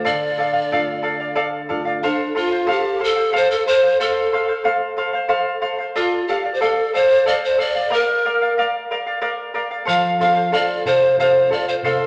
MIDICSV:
0, 0, Header, 1, 4, 480
1, 0, Start_track
1, 0, Tempo, 654308
1, 35, Time_signature, 6, 3, 24, 8
1, 8852, End_track
2, 0, Start_track
2, 0, Title_t, "Charango"
2, 0, Program_c, 0, 24
2, 33, Note_on_c, 0, 74, 80
2, 34, Note_on_c, 0, 69, 75
2, 38, Note_on_c, 0, 77, 74
2, 269, Note_off_c, 0, 69, 0
2, 272, Note_off_c, 0, 74, 0
2, 278, Note_off_c, 0, 77, 0
2, 278, Note_on_c, 0, 69, 50
2, 281, Note_on_c, 0, 74, 55
2, 289, Note_on_c, 0, 77, 56
2, 382, Note_off_c, 0, 77, 0
2, 390, Note_on_c, 0, 77, 47
2, 395, Note_off_c, 0, 74, 0
2, 398, Note_off_c, 0, 69, 0
2, 403, Note_on_c, 0, 74, 38
2, 515, Note_off_c, 0, 77, 0
2, 521, Note_off_c, 0, 74, 0
2, 527, Note_on_c, 0, 69, 68
2, 530, Note_on_c, 0, 74, 65
2, 536, Note_on_c, 0, 77, 73
2, 744, Note_off_c, 0, 69, 0
2, 747, Note_off_c, 0, 74, 0
2, 752, Note_off_c, 0, 77, 0
2, 753, Note_on_c, 0, 69, 56
2, 755, Note_on_c, 0, 74, 61
2, 761, Note_on_c, 0, 77, 64
2, 871, Note_off_c, 0, 77, 0
2, 877, Note_off_c, 0, 69, 0
2, 878, Note_off_c, 0, 74, 0
2, 880, Note_on_c, 0, 77, 52
2, 890, Note_on_c, 0, 74, 39
2, 986, Note_off_c, 0, 74, 0
2, 992, Note_off_c, 0, 77, 0
2, 993, Note_on_c, 0, 69, 73
2, 995, Note_on_c, 0, 74, 76
2, 1001, Note_on_c, 0, 77, 72
2, 1230, Note_off_c, 0, 69, 0
2, 1236, Note_off_c, 0, 74, 0
2, 1237, Note_off_c, 0, 77, 0
2, 1239, Note_on_c, 0, 69, 53
2, 1245, Note_on_c, 0, 74, 51
2, 1246, Note_on_c, 0, 77, 55
2, 1350, Note_off_c, 0, 77, 0
2, 1359, Note_on_c, 0, 77, 51
2, 1361, Note_off_c, 0, 69, 0
2, 1364, Note_off_c, 0, 74, 0
2, 1373, Note_on_c, 0, 74, 40
2, 1481, Note_off_c, 0, 77, 0
2, 1487, Note_off_c, 0, 74, 0
2, 1490, Note_on_c, 0, 69, 72
2, 1494, Note_on_c, 0, 72, 68
2, 1494, Note_on_c, 0, 77, 68
2, 1713, Note_off_c, 0, 69, 0
2, 1719, Note_off_c, 0, 72, 0
2, 1722, Note_on_c, 0, 69, 57
2, 1723, Note_off_c, 0, 77, 0
2, 1728, Note_on_c, 0, 72, 55
2, 1732, Note_on_c, 0, 77, 59
2, 1831, Note_off_c, 0, 77, 0
2, 1836, Note_off_c, 0, 72, 0
2, 1839, Note_on_c, 0, 77, 47
2, 1843, Note_off_c, 0, 69, 0
2, 1850, Note_on_c, 0, 72, 41
2, 1949, Note_off_c, 0, 72, 0
2, 1955, Note_off_c, 0, 77, 0
2, 1956, Note_on_c, 0, 69, 73
2, 1958, Note_on_c, 0, 72, 71
2, 1968, Note_on_c, 0, 77, 75
2, 2185, Note_off_c, 0, 69, 0
2, 2194, Note_on_c, 0, 69, 53
2, 2195, Note_off_c, 0, 77, 0
2, 2196, Note_off_c, 0, 72, 0
2, 2204, Note_on_c, 0, 72, 49
2, 2204, Note_on_c, 0, 77, 59
2, 2308, Note_off_c, 0, 77, 0
2, 2314, Note_off_c, 0, 72, 0
2, 2317, Note_on_c, 0, 77, 48
2, 2320, Note_off_c, 0, 69, 0
2, 2327, Note_on_c, 0, 72, 36
2, 2433, Note_off_c, 0, 72, 0
2, 2437, Note_off_c, 0, 77, 0
2, 2441, Note_on_c, 0, 69, 67
2, 2442, Note_on_c, 0, 72, 67
2, 2445, Note_on_c, 0, 77, 78
2, 2678, Note_off_c, 0, 69, 0
2, 2684, Note_off_c, 0, 72, 0
2, 2686, Note_off_c, 0, 77, 0
2, 2686, Note_on_c, 0, 69, 46
2, 2695, Note_on_c, 0, 72, 52
2, 2701, Note_on_c, 0, 77, 59
2, 2798, Note_off_c, 0, 77, 0
2, 2803, Note_off_c, 0, 72, 0
2, 2806, Note_on_c, 0, 77, 45
2, 2807, Note_off_c, 0, 69, 0
2, 2817, Note_on_c, 0, 72, 40
2, 2927, Note_off_c, 0, 77, 0
2, 2930, Note_off_c, 0, 72, 0
2, 2934, Note_on_c, 0, 69, 76
2, 2939, Note_on_c, 0, 72, 74
2, 2939, Note_on_c, 0, 77, 78
2, 3163, Note_off_c, 0, 69, 0
2, 3169, Note_off_c, 0, 72, 0
2, 3172, Note_on_c, 0, 69, 51
2, 3173, Note_off_c, 0, 77, 0
2, 3177, Note_on_c, 0, 72, 64
2, 3186, Note_on_c, 0, 77, 64
2, 3277, Note_off_c, 0, 77, 0
2, 3283, Note_off_c, 0, 72, 0
2, 3286, Note_on_c, 0, 77, 50
2, 3290, Note_off_c, 0, 69, 0
2, 3292, Note_on_c, 0, 72, 42
2, 3402, Note_off_c, 0, 72, 0
2, 3402, Note_off_c, 0, 77, 0
2, 3404, Note_on_c, 0, 69, 67
2, 3411, Note_on_c, 0, 72, 71
2, 3411, Note_on_c, 0, 77, 78
2, 3635, Note_off_c, 0, 69, 0
2, 3643, Note_off_c, 0, 72, 0
2, 3643, Note_off_c, 0, 77, 0
2, 3643, Note_on_c, 0, 69, 59
2, 3652, Note_on_c, 0, 72, 65
2, 3652, Note_on_c, 0, 77, 69
2, 3754, Note_off_c, 0, 77, 0
2, 3760, Note_off_c, 0, 72, 0
2, 3763, Note_on_c, 0, 77, 55
2, 3765, Note_off_c, 0, 69, 0
2, 3776, Note_on_c, 0, 72, 46
2, 3873, Note_off_c, 0, 77, 0
2, 3874, Note_off_c, 0, 72, 0
2, 3877, Note_on_c, 0, 69, 78
2, 3882, Note_on_c, 0, 77, 81
2, 3883, Note_on_c, 0, 72, 83
2, 4111, Note_off_c, 0, 69, 0
2, 4113, Note_off_c, 0, 72, 0
2, 4115, Note_off_c, 0, 77, 0
2, 4119, Note_on_c, 0, 69, 58
2, 4121, Note_on_c, 0, 72, 63
2, 4124, Note_on_c, 0, 77, 61
2, 4235, Note_off_c, 0, 77, 0
2, 4241, Note_off_c, 0, 72, 0
2, 4243, Note_off_c, 0, 69, 0
2, 4244, Note_on_c, 0, 77, 48
2, 4256, Note_on_c, 0, 72, 39
2, 4366, Note_off_c, 0, 77, 0
2, 4368, Note_on_c, 0, 69, 73
2, 4370, Note_on_c, 0, 74, 79
2, 4371, Note_off_c, 0, 72, 0
2, 4377, Note_on_c, 0, 77, 81
2, 4603, Note_off_c, 0, 69, 0
2, 4608, Note_off_c, 0, 74, 0
2, 4612, Note_off_c, 0, 77, 0
2, 4612, Note_on_c, 0, 69, 58
2, 4619, Note_on_c, 0, 74, 61
2, 4621, Note_on_c, 0, 77, 61
2, 4714, Note_off_c, 0, 77, 0
2, 4723, Note_on_c, 0, 77, 49
2, 4726, Note_off_c, 0, 74, 0
2, 4729, Note_off_c, 0, 69, 0
2, 4735, Note_on_c, 0, 74, 40
2, 4845, Note_off_c, 0, 77, 0
2, 4846, Note_off_c, 0, 74, 0
2, 4847, Note_on_c, 0, 69, 78
2, 4853, Note_on_c, 0, 77, 74
2, 4855, Note_on_c, 0, 74, 74
2, 5078, Note_off_c, 0, 69, 0
2, 5085, Note_off_c, 0, 74, 0
2, 5087, Note_on_c, 0, 69, 56
2, 5088, Note_off_c, 0, 77, 0
2, 5093, Note_on_c, 0, 74, 55
2, 5097, Note_on_c, 0, 77, 59
2, 5194, Note_off_c, 0, 77, 0
2, 5203, Note_on_c, 0, 77, 51
2, 5204, Note_off_c, 0, 74, 0
2, 5206, Note_off_c, 0, 69, 0
2, 5212, Note_on_c, 0, 74, 42
2, 5315, Note_off_c, 0, 74, 0
2, 5321, Note_off_c, 0, 77, 0
2, 5324, Note_on_c, 0, 69, 77
2, 5324, Note_on_c, 0, 74, 77
2, 5330, Note_on_c, 0, 77, 81
2, 5549, Note_off_c, 0, 69, 0
2, 5556, Note_off_c, 0, 74, 0
2, 5558, Note_on_c, 0, 69, 52
2, 5561, Note_off_c, 0, 77, 0
2, 5565, Note_on_c, 0, 74, 56
2, 5569, Note_on_c, 0, 77, 57
2, 5676, Note_off_c, 0, 77, 0
2, 5681, Note_off_c, 0, 69, 0
2, 5685, Note_off_c, 0, 74, 0
2, 5685, Note_on_c, 0, 77, 48
2, 5695, Note_on_c, 0, 74, 41
2, 5794, Note_off_c, 0, 74, 0
2, 5797, Note_on_c, 0, 70, 78
2, 5798, Note_off_c, 0, 77, 0
2, 5804, Note_on_c, 0, 74, 78
2, 5807, Note_on_c, 0, 77, 82
2, 6040, Note_off_c, 0, 70, 0
2, 6044, Note_off_c, 0, 74, 0
2, 6045, Note_off_c, 0, 77, 0
2, 6052, Note_on_c, 0, 70, 58
2, 6056, Note_on_c, 0, 74, 56
2, 6059, Note_on_c, 0, 77, 62
2, 6166, Note_off_c, 0, 77, 0
2, 6168, Note_off_c, 0, 70, 0
2, 6170, Note_off_c, 0, 74, 0
2, 6175, Note_on_c, 0, 77, 51
2, 6182, Note_on_c, 0, 74, 37
2, 6289, Note_off_c, 0, 77, 0
2, 6290, Note_off_c, 0, 74, 0
2, 6293, Note_on_c, 0, 70, 67
2, 6300, Note_on_c, 0, 74, 71
2, 6301, Note_on_c, 0, 77, 80
2, 6527, Note_off_c, 0, 70, 0
2, 6531, Note_off_c, 0, 74, 0
2, 6531, Note_off_c, 0, 77, 0
2, 6535, Note_on_c, 0, 70, 57
2, 6540, Note_on_c, 0, 74, 62
2, 6543, Note_on_c, 0, 77, 63
2, 6641, Note_off_c, 0, 77, 0
2, 6647, Note_off_c, 0, 74, 0
2, 6648, Note_off_c, 0, 70, 0
2, 6650, Note_on_c, 0, 77, 52
2, 6658, Note_on_c, 0, 74, 41
2, 6753, Note_off_c, 0, 74, 0
2, 6757, Note_off_c, 0, 77, 0
2, 6760, Note_on_c, 0, 70, 76
2, 6762, Note_on_c, 0, 74, 77
2, 6766, Note_on_c, 0, 77, 76
2, 6991, Note_off_c, 0, 70, 0
2, 6995, Note_off_c, 0, 74, 0
2, 7000, Note_off_c, 0, 77, 0
2, 7000, Note_on_c, 0, 70, 60
2, 7003, Note_on_c, 0, 74, 61
2, 7009, Note_on_c, 0, 77, 61
2, 7113, Note_off_c, 0, 77, 0
2, 7116, Note_off_c, 0, 74, 0
2, 7120, Note_off_c, 0, 70, 0
2, 7122, Note_on_c, 0, 77, 48
2, 7125, Note_on_c, 0, 74, 35
2, 7226, Note_off_c, 0, 74, 0
2, 7229, Note_on_c, 0, 69, 69
2, 7233, Note_off_c, 0, 77, 0
2, 7236, Note_on_c, 0, 72, 74
2, 7243, Note_on_c, 0, 77, 76
2, 7473, Note_off_c, 0, 69, 0
2, 7477, Note_off_c, 0, 72, 0
2, 7480, Note_off_c, 0, 77, 0
2, 7481, Note_on_c, 0, 69, 54
2, 7488, Note_on_c, 0, 72, 64
2, 7492, Note_on_c, 0, 77, 62
2, 7584, Note_off_c, 0, 77, 0
2, 7589, Note_off_c, 0, 72, 0
2, 7592, Note_on_c, 0, 77, 49
2, 7599, Note_off_c, 0, 69, 0
2, 7603, Note_on_c, 0, 72, 39
2, 7714, Note_off_c, 0, 72, 0
2, 7715, Note_off_c, 0, 77, 0
2, 7718, Note_on_c, 0, 69, 69
2, 7723, Note_on_c, 0, 72, 65
2, 7727, Note_on_c, 0, 77, 82
2, 7957, Note_off_c, 0, 69, 0
2, 7959, Note_off_c, 0, 72, 0
2, 7961, Note_off_c, 0, 77, 0
2, 7967, Note_on_c, 0, 69, 49
2, 7970, Note_on_c, 0, 72, 54
2, 7974, Note_on_c, 0, 77, 59
2, 8079, Note_off_c, 0, 77, 0
2, 8081, Note_off_c, 0, 69, 0
2, 8082, Note_off_c, 0, 72, 0
2, 8088, Note_on_c, 0, 77, 45
2, 8094, Note_on_c, 0, 72, 38
2, 8201, Note_off_c, 0, 77, 0
2, 8204, Note_off_c, 0, 72, 0
2, 8212, Note_on_c, 0, 69, 65
2, 8213, Note_on_c, 0, 72, 72
2, 8217, Note_on_c, 0, 77, 76
2, 8431, Note_off_c, 0, 69, 0
2, 8438, Note_off_c, 0, 72, 0
2, 8439, Note_on_c, 0, 69, 54
2, 8445, Note_off_c, 0, 77, 0
2, 8447, Note_on_c, 0, 72, 54
2, 8452, Note_on_c, 0, 77, 58
2, 8556, Note_off_c, 0, 69, 0
2, 8560, Note_off_c, 0, 72, 0
2, 8562, Note_off_c, 0, 77, 0
2, 8570, Note_on_c, 0, 77, 50
2, 8579, Note_on_c, 0, 72, 39
2, 8680, Note_off_c, 0, 72, 0
2, 8681, Note_off_c, 0, 77, 0
2, 8687, Note_on_c, 0, 69, 76
2, 8689, Note_on_c, 0, 72, 77
2, 8695, Note_on_c, 0, 77, 75
2, 8852, Note_off_c, 0, 69, 0
2, 8852, Note_off_c, 0, 72, 0
2, 8852, Note_off_c, 0, 77, 0
2, 8852, End_track
3, 0, Start_track
3, 0, Title_t, "Pan flute"
3, 0, Program_c, 1, 75
3, 48, Note_on_c, 1, 74, 94
3, 978, Note_off_c, 1, 74, 0
3, 1492, Note_on_c, 1, 62, 74
3, 1712, Note_off_c, 1, 62, 0
3, 1736, Note_on_c, 1, 65, 74
3, 1985, Note_on_c, 1, 67, 77
3, 1996, Note_off_c, 1, 65, 0
3, 2215, Note_off_c, 1, 67, 0
3, 2232, Note_on_c, 1, 69, 95
3, 2443, Note_off_c, 1, 69, 0
3, 2469, Note_on_c, 1, 72, 81
3, 2570, Note_off_c, 1, 72, 0
3, 2574, Note_on_c, 1, 69, 76
3, 2682, Note_off_c, 1, 69, 0
3, 2696, Note_on_c, 1, 72, 90
3, 2915, Note_off_c, 1, 72, 0
3, 2938, Note_on_c, 1, 69, 84
3, 3444, Note_off_c, 1, 69, 0
3, 4375, Note_on_c, 1, 65, 77
3, 4595, Note_off_c, 1, 65, 0
3, 4607, Note_on_c, 1, 67, 74
3, 4781, Note_off_c, 1, 67, 0
3, 4799, Note_on_c, 1, 72, 59
3, 4854, Note_on_c, 1, 69, 77
3, 4865, Note_off_c, 1, 72, 0
3, 5090, Note_off_c, 1, 69, 0
3, 5095, Note_on_c, 1, 72, 101
3, 5335, Note_on_c, 1, 74, 88
3, 5346, Note_off_c, 1, 72, 0
3, 5450, Note_off_c, 1, 74, 0
3, 5462, Note_on_c, 1, 72, 82
3, 5578, Note_on_c, 1, 74, 85
3, 5589, Note_off_c, 1, 72, 0
3, 5822, Note_on_c, 1, 70, 86
3, 5833, Note_off_c, 1, 74, 0
3, 6352, Note_off_c, 1, 70, 0
3, 7256, Note_on_c, 1, 77, 97
3, 7471, Note_off_c, 1, 77, 0
3, 7490, Note_on_c, 1, 77, 84
3, 7728, Note_on_c, 1, 74, 80
3, 7739, Note_off_c, 1, 77, 0
3, 7962, Note_off_c, 1, 74, 0
3, 7971, Note_on_c, 1, 72, 87
3, 8186, Note_off_c, 1, 72, 0
3, 8215, Note_on_c, 1, 72, 75
3, 8455, Note_on_c, 1, 74, 75
3, 8466, Note_off_c, 1, 72, 0
3, 8564, Note_off_c, 1, 74, 0
3, 8573, Note_on_c, 1, 72, 73
3, 8617, Note_off_c, 1, 72, 0
3, 8700, Note_on_c, 1, 69, 85
3, 8852, Note_off_c, 1, 69, 0
3, 8852, End_track
4, 0, Start_track
4, 0, Title_t, "Nylon-string guitar"
4, 0, Program_c, 2, 24
4, 45, Note_on_c, 2, 50, 60
4, 525, Note_on_c, 2, 57, 45
4, 528, Note_on_c, 2, 62, 40
4, 535, Note_on_c, 2, 65, 51
4, 990, Note_off_c, 2, 57, 0
4, 992, Note_off_c, 2, 62, 0
4, 995, Note_off_c, 2, 65, 0
4, 1247, Note_on_c, 2, 57, 43
4, 1250, Note_on_c, 2, 62, 36
4, 1251, Note_on_c, 2, 65, 46
4, 1459, Note_off_c, 2, 50, 0
4, 1479, Note_off_c, 2, 57, 0
4, 1479, Note_off_c, 2, 62, 0
4, 1480, Note_off_c, 2, 65, 0
4, 7246, Note_on_c, 2, 53, 61
4, 7483, Note_on_c, 2, 60, 44
4, 7486, Note_on_c, 2, 65, 41
4, 7489, Note_on_c, 2, 69, 51
4, 7706, Note_off_c, 2, 53, 0
4, 7710, Note_off_c, 2, 60, 0
4, 7711, Note_off_c, 2, 65, 0
4, 7714, Note_off_c, 2, 69, 0
4, 7719, Note_on_c, 2, 60, 45
4, 7721, Note_on_c, 2, 65, 42
4, 7723, Note_on_c, 2, 69, 49
4, 7960, Note_on_c, 2, 48, 62
4, 8101, Note_off_c, 2, 60, 0
4, 8101, Note_off_c, 2, 65, 0
4, 8103, Note_off_c, 2, 69, 0
4, 8197, Note_on_c, 2, 60, 45
4, 8202, Note_on_c, 2, 65, 39
4, 8205, Note_on_c, 2, 69, 49
4, 8421, Note_off_c, 2, 48, 0
4, 8426, Note_off_c, 2, 60, 0
4, 8430, Note_off_c, 2, 65, 0
4, 8430, Note_off_c, 2, 69, 0
4, 8434, Note_on_c, 2, 60, 45
4, 8438, Note_on_c, 2, 65, 43
4, 8441, Note_on_c, 2, 69, 48
4, 8676, Note_on_c, 2, 48, 64
4, 8816, Note_off_c, 2, 60, 0
4, 8819, Note_off_c, 2, 65, 0
4, 8819, Note_off_c, 2, 69, 0
4, 8852, Note_off_c, 2, 48, 0
4, 8852, End_track
0, 0, End_of_file